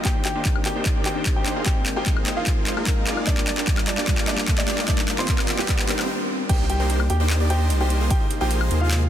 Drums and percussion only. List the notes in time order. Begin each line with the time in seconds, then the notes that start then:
0.05 kick, clap, closed hi-hat
0.25 clap, closed hi-hat
0.45 kick, clap, closed hi-hat
0.56 high woodblock
0.65 clap, closed hi-hat
0.86 kick, clap, closed hi-hat
1.06 clap, closed hi-hat
1.26 kick, clap, closed hi-hat
1.46 clap, closed hi-hat
1.66 kick, clap, closed hi-hat
1.86 clap, closed hi-hat
2.06 kick, clap, closed hi-hat
2.17 high woodblock
2.26 clap, closed hi-hat
2.47 kick, clap, closed hi-hat
2.67 clap, closed hi-hat
2.77 high woodblock
2.87 kick, clap, closed hi-hat
3.07 clap, closed hi-hat
3.17 high woodblock
3.27 kick, clap, closed hi-hat
3.38 clap
3.47 clap, closed hi-hat
3.58 clap
3.67 kick, clap, closed hi-hat
3.78 clap, high woodblock
3.88 clap, closed hi-hat
3.98 clap
4.08 kick, clap, closed hi-hat
4.18 clap
4.28 clap, closed hi-hat
4.38 clap
4.48 kick, clap, closed hi-hat
4.58 clap
4.68 clap, closed hi-hat
4.78 clap
4.88 kick, clap, closed hi-hat
4.98 clap
5.08 clap, closed hi-hat
5.19 clap
5.28 kick, clap, closed hi-hat
5.39 clap, high woodblock
5.49 clap, closed hi-hat
5.59 clap
5.69 kick, clap, closed hi-hat
5.79 clap
5.89 clap, closed hi-hat
5.99 clap, high woodblock
6.49 kick, closed hi-hat, crash
6.70 closed hi-hat
6.90 closed hi-hat
7.00 high woodblock
7.10 closed hi-hat
7.30 clap, closed hi-hat
7.50 closed hi-hat
7.70 closed hi-hat
7.90 closed hi-hat
8.10 kick, closed hi-hat
8.31 closed hi-hat
8.51 closed hi-hat
8.61 high woodblock
8.71 closed hi-hat
8.91 clap, closed hi-hat